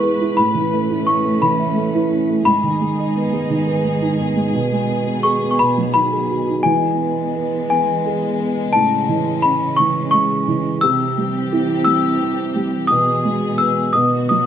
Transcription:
Already playing: E3 G#3 B3 E4 G#4 B4 G#5 C#6
0.02 G#4
0.20 E4
0.37 A2 A3 C#4 B5
0.55 E3
0.73 A3
0.90 E4
1.07 C#4 C#6
1.25 A3
1.42 E3 B5
1.59 E5
1.77 A3
1.95 E4
2.11 C#4
2.29 A3
2.45 G#2 D#3 D#4 G#4 B5
2.63 D#3
2.81 G#3
2.98 D#5
3.15 B3
3.32 G#3
3.50 D#3
3.67 B4
3.84 G#3
4.02 D#4
4.19 B3
4.36 G#3
4.52 B2 B3
4.72 G#3
4.89 B3
5.07 B4
5.23 G#4 C#6
5.42 B3
5.51 C#6
5.59 B2 D#3 B5
5.78 F#3
5.94 D#4 B5
6.12 G#4
6.31 F#4
6.48 D#4
6.63 E3 G#3 B3 G#5
7.01 B3
7.36 B4
7.70 B3 G#5
8.06 G#4
8.40 B3
8.73 A2 C#3 C#4 A5
9.09 E3
9.42 C#4 B5
9.77 E3 C#6
10.11 G#3 C#6
10.48 E3
10.81 C3 E3 C4 G4 E6
11.18 G3
11.52 E4
11.85 G3 E6
12.21 C4
12.56 G3
12.87 B2 B3 G#4 D#6
13.25 G#3
13.58 B4 E6
13.93 B2 D#3 B3 F#4 D#6
14.29 F#3 D#6

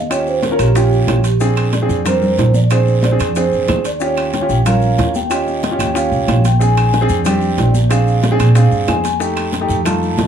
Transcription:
Already playing: D#2 D#5
0.10 C#4 F4 G4 C#5, high bongo, high conga, high timbale, long guiro, claves, maracas
0.26 C5, high bongo, high conga, maracas
0.43 A#4, high bongo, high conga, high timbale, low timbale, short guiro, maracas
0.51 C#4 F4 A#4
0.59 A#1 G4, high timbale, short guiro, claves, maracas
0.75 C#4 F4 G4, high bongo, high conga, high timbale, long guiro, maracas
0.91 high bongo, high conga, maracas
1.07 A#1, high bongo, low bongo, high conga, high timbale, low timbale, short guiro, claves, maracas
1.24 high bongo, high timbale, short guiro, maracas
1.39 C4 D4 G#4, high bongo, high conga, long guiro, maracas
1.56 high bongo, high conga, high timbale, claves, maracas
1.73 D5, high bongo, high conga, high timbale, low timbale, short guiro, maracas
1.82 C4 D4 G#4
1.89 F2, short guiro, maracas
2.05 C4 D4 A#4 C5, high bongo, high conga, low conga, high timbale, long guiro, claves, maracas
2.22 high bongo, high conga, low conga, maracas
2.38 A#1, high bongo, low bongo, high conga, high timbale, low timbale, short guiro, maracas
2.54 D5, high bongo, high conga, short guiro, maracas
2.70 C4 D4 G#4 C5, high bongo, high conga, high timbale, long guiro, claves, maracas
2.87 high bongo, high conga, maracas
3.03 D5, high bongo, high conga, high timbale, low timbale, short guiro, maracas
3.11 C4 D4 G#4
3.19 F2, high timbale, short guiro, claves, maracas
3.36 C4 D4 G#4 C5, high bongo, high conga, high timbale, long guiro, maracas
3.52 F2, high bongo, high conga, maracas
3.68 D#2, high bongo, low bongo, high conga, high timbale, low timbale, short guiro, claves, maracas
3.84 D5, high bongo, high timbale, short guiro, maracas
4.00 C#4 F4 G4 C#5, high bongo, high conga, long guiro, maracas
4.17 high bongo, high conga, high timbale, claves, maracas
4.33 G5, high bongo, high conga, high timbale, low timbale, short guiro, maracas
4.41 C#4 F4 G4
4.49 A#1, short guiro, maracas
4.65 C#4 F4 A#4 F5, high bongo, high conga, low conga, high timbale, long guiro, claves, maracas
4.82 high bongo, high conga, maracas
4.98 D#2, high bongo, low bongo, high conga, high timbale, low timbale, short guiro, maracas
5.14 G5, high bongo, high conga, short guiro, maracas
5.30 C#4 F4 G4 D#5, high bongo, high timbale, long guiro, claves, maracas
5.47 high bongo, high conga, maracas
5.63 G5, high bongo, high conga, high timbale, low timbale, short guiro, maracas
5.71 C#4 F4 G4
5.79 D#2, high timbale, short guiro, claves, maracas
5.94 C#4 F4 G4 F5, high bongo, high conga, high timbale, long guiro, maracas
6.11 C2, high bongo, high conga, maracas
6.28 A#1, high bongo, low bongo, high conga, high timbale, low timbale, short guiro, claves, maracas
6.45 G5, high bongo, high conga, high timbale, short guiro, maracas
6.59 C4 D4 G#4 G#5, high bongo, long guiro, maracas
6.77 high bongo, high conga, high timbale, claves, maracas
6.93 high bongo, high conga, high timbale, low timbale, short guiro, maracas
7.01 C4 D4 G#4
7.09 F2, short guiro, maracas
7.25 C4 D4 G4, high bongo, high conga, low conga, high timbale, long guiro, claves, maracas
7.42 high bongo, high conga, maracas
7.58 A#1 D5, high bongo, low bongo, high conga, high timbale, low timbale, short guiro, maracas
7.74 high bongo, high conga, short guiro, maracas
7.89 C4 D4 G#4 F5, high bongo, high conga, high timbale, long guiro, claves, maracas
8.07 high bongo, high conga, maracas
8.23 high bongo, high conga, high timbale, low timbale, short guiro, maracas
8.31 C4 D4 G#4
8.39 A#2, high timbale, short guiro, claves, maracas
8.55 C4 D4 G#4 F5, high bongo, high conga, high timbale, long guiro, maracas
8.71 G2, high bongo, high conga, maracas
8.88 F2 G#5, high bongo, low bongo, high conga, high timbale, low timbale, short guiro, claves, maracas
9.04 high bongo, high conga, high timbale, short guiro, maracas
9.20 A3 D#4 G4, high bongo, high conga, long guiro, maracas
9.37 high bongo, high conga, high timbale, claves, maracas
9.53 G5, high bongo, high conga, high timbale, low timbale, short guiro, maracas
9.60 A3 D#4 G4
9.69 F2, short guiro, maracas
9.85 A3 D#4 F4 A5, high bongo, high conga, low conga, high timbale, long guiro, claves, maracas
10.02 high bongo, high conga, maracas
10.17 D#2, high bongo, low bongo, high conga, high timbale, low timbale, short guiro, maracas

